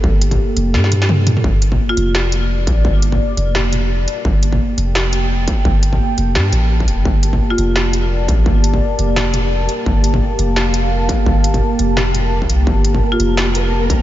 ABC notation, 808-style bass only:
X:1
M:4/4
L:1/16
Q:"Swing 16ths" 1/4=171
K:Gm
V:1 name="808-style bass" clef=bass
G,,,4 z2 F,,,2 G,,6- G,, z | G,,,4 z2 F,,,8 A,,,2 | G,,,4 z2 F,,,8 z2 | G,,,4 z2 F,,,8 z2 |
G,,,4 z2 F,,,2 G,,2 A,,,4 D,,, G,,, | G,,,4 z2 F,,,8 A,,,2 | G,,,4 z2 F,,,8 z2 | G,,,4 z2 F,,,8 z2 |
G,,,4 z2 F,,,8 C,,2 | G,,,4 z2 F,,,8 A,,,2 |]